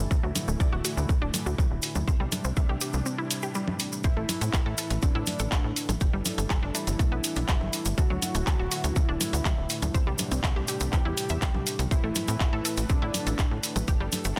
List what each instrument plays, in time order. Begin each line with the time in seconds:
Already playing: synth drone A2 E3
0.11 analog synth bass D2, analog synth pad D3 A3 E4, synth arpeggio sound A4, kick, maracas
0.23 analog synth bass D2, synth arpeggio sound F#3
0.35 open hi-hat, low conga, maracas
0.48 analog synth bass D1, synth arpeggio sound A3, maracas
0.60 analog synth bass D2, synth arpeggio sound D5, kick, maracas
0.72 analog synth bass D1, synth arpeggio sound F#4
0.85 synth arpeggio sound F#4, open hi-hat, maracas
0.97 analog synth bass D2, maracas
1.09 analog synth bass D2, synth arpeggio sound A3, kick, maracas
1.22 analog synth bass D1, synth arpeggio sound D4
1.34 open hi-hat, low conga, maracas
1.46 analog synth bass D2, synth arpeggio sound F#4, maracas
1.58 analog synth bass D2, synth arpeggio sound F#3, kick, maracas
1.71 analog synth bass D1
1.82 open hi-hat, maracas
1.95 analog synth bass D2, low conga, maracas
2.08 analog synth bass C2, analog synth pad C3 G3 D4, synth arpeggio sound C5, kick, maracas
2.20 analog synth bass C2, synth arpeggio sound G3
2.32 open hi-hat, low conga, maracas
2.44 analog synth bass C2, synth arpeggio sound C4, maracas
2.57 analog synth bass C2, synth arpeggio sound E5, kick, maracas
2.69 analog synth bass C2, synth arpeggio sound G4
2.81 synth arpeggio sound G4, open hi-hat, maracas
2.93 analog synth bass C2, maracas
3.06 synth arpeggio sound C4, maracas
3.18 synth arpeggio sound E4
3.31 open hi-hat, maracas
3.42 synth arpeggio sound G4, maracas
3.55 synth arpeggio sound G3, maracas
3.68 low conga
3.80 open hi-hat, maracas
3.92 maracas
4.04 analog synth bass A1, synth drone A2 E3, analog synth pad A3 E4 B4, analog synth lead E4, synth arpeggio sound C5, kick, closed hi-hat, maracas
4.17 analog synth bass A1, synth arpeggio sound A3
4.29 open hi-hat, low conga, maracas
4.41 analog synth bass A2, synth arpeggio sound C4, closed hi-hat, maracas
4.53 analog synth bass A1, synth arpeggio sound E5, kick, clap, closed hi-hat, maracas
4.66 analog synth bass A2, synth arpeggio sound A4
4.78 synth arpeggio sound A4, open hi-hat, maracas
4.90 analog synth bass A1, closed hi-hat, maracas
5.02 analog synth bass A1, synth arpeggio sound C4, analog synth lead D4, kick, closed hi-hat, maracas
5.15 analog synth bass A2, synth arpeggio sound E4
5.27 open hi-hat, low conga, maracas
5.39 analog synth bass A1, synth arpeggio sound A4, closed hi-hat, maracas
5.52 analog synth bass A1, synth arpeggio sound A3, kick, clap, closed hi-hat, maracas
5.64 analog synth bass A2
5.76 open hi-hat, maracas
5.89 analog synth bass A1, closed hi-hat, low conga, maracas
6.01 analog synth bass G1, analog synth pad G3 D4 A4, synth arpeggio sound G4, kick, closed hi-hat, maracas
6.13 analog synth bass G1, synth arpeggio sound G3
6.25 open hi-hat, low conga, maracas
6.38 analog synth bass G1, synth arpeggio sound A3, closed hi-hat, maracas
6.50 analog synth bass G1, synth arpeggio sound A4, kick, clap, closed hi-hat, maracas
6.63 analog synth bass G1, synth arpeggio sound D4
6.75 synth arpeggio sound D4, analog synth lead E4, open hi-hat, maracas
6.87 analog synth bass G1, closed hi-hat, maracas
6.99 analog synth bass B1, synth arpeggio sound A3, kick, closed hi-hat, maracas
7.12 analog synth bass B1, synth arpeggio sound B3
7.24 open hi-hat, maracas
7.36 analog synth bass B1, synth arpeggio sound D4, closed hi-hat, maracas
7.48 analog synth bass G1, synth arpeggio sound G3, kick, clap, closed hi-hat, maracas
7.61 analog synth bass G1, low conga
7.73 open hi-hat, maracas
7.85 analog synth bass G1, closed hi-hat, maracas
7.98 analog synth bass D2, analog synth pad D3 A3 E4, analog synth lead F#4, synth arpeggio sound A4, kick, closed hi-hat, maracas
8.10 analog synth bass D2, synth arpeggio sound F#3
8.22 open hi-hat, low conga, maracas
8.35 analog synth bass D1, synth arpeggio sound A3, closed hi-hat, maracas
8.47 analog synth bass D2, synth arpeggio sound D5, kick, clap, closed hi-hat, maracas
8.59 analog synth bass D1, synth arpeggio sound F#4
8.72 synth arpeggio sound F#4, open hi-hat, maracas
8.84 analog synth bass D2, closed hi-hat, maracas
8.96 analog synth bass D2, synth arpeggio sound A3, analog synth lead E4, kick, closed hi-hat, maracas
9.09 analog synth bass D1, synth arpeggio sound D4
9.21 open hi-hat, low conga, maracas
9.33 analog synth bass D2, synth arpeggio sound F#4, closed hi-hat, maracas
9.45 analog synth bass D2, synth arpeggio sound F#3, kick, clap, closed hi-hat, maracas
9.58 analog synth bass D1
9.70 open hi-hat, maracas
9.82 analog synth bass D2, closed hi-hat, low conga, maracas
9.94 analog synth bass C2, analog synth pad C3 G3 D4, synth arpeggio sound C5, kick, closed hi-hat, maracas
10.07 analog synth bass C2, synth arpeggio sound G3
10.19 open hi-hat, low conga, maracas
10.32 analog synth bass C2, synth arpeggio sound C4, closed hi-hat, maracas
10.44 analog synth bass C2, synth arpeggio sound E5, kick, clap, closed hi-hat, maracas
10.56 analog synth bass C2, synth arpeggio sound G4
10.68 analog synth lead G4, synth arpeggio sound G4, open hi-hat, maracas
10.80 analog synth bass C2, closed hi-hat, maracas
10.93 analog synth bass E2, synth arpeggio sound C4, kick, clap, closed hi-hat, maracas
11.05 analog synth bass E2, synth arpeggio sound E4
11.17 open hi-hat, maracas
11.29 analog synth bass E2, synth arpeggio sound E5, closed hi-hat, maracas
11.42 analog synth bass C2, synth arpeggio sound C4, kick, clap, closed hi-hat, maracas
11.54 analog synth bass C2, low conga
11.67 open hi-hat, maracas
11.79 analog synth bass C2, closed hi-hat, maracas
11.91 analog synth bass A1, analog synth pad A3 E4 B4, analog synth lead E4, synth arpeggio sound C5, kick, closed hi-hat, maracas
12.04 analog synth bass A1, synth arpeggio sound A3
12.15 open hi-hat, low conga, maracas
12.28 analog synth bass A2, synth arpeggio sound C4, closed hi-hat, maracas
12.40 analog synth bass A1, synth arpeggio sound E5, kick, clap, closed hi-hat, maracas
12.53 analog synth bass A2, synth arpeggio sound A4
12.65 synth arpeggio sound A4, open hi-hat, maracas
12.77 analog synth bass A1, closed hi-hat, maracas
12.89 analog synth bass A1, synth arpeggio sound C4, analog synth lead D4, kick, closed hi-hat, maracas
13.02 analog synth bass A2, synth arpeggio sound E4
13.14 open hi-hat, low conga, maracas
13.27 analog synth bass A1, synth arpeggio sound A4, closed hi-hat, maracas
13.39 analog synth bass A1, synth arpeggio sound A3, kick, clap, closed hi-hat, maracas
13.51 analog synth bass A2
13.63 open hi-hat, maracas
13.76 analog synth bass A1, closed hi-hat, low conga, maracas
13.88 analog synth bass G1, analog synth pad G3 D4 A4, synth arpeggio sound G4, kick, closed hi-hat, maracas
14.00 analog synth bass G1, synth arpeggio sound G3
14.12 open hi-hat, low conga, maracas
14.25 analog synth bass G1, synth arpeggio sound A3, closed hi-hat, maracas